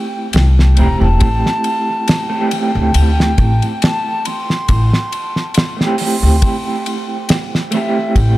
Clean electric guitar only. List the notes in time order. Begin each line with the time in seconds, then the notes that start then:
Already playing: A3 C4 E4 G4
0.75 A3 C4 E4
0.81 G4
2.30 A3 C4 E4
2.35 G4
5.77 A3 C4
5.81 E4 G4
7.71 A3 C4
7.75 E4 G4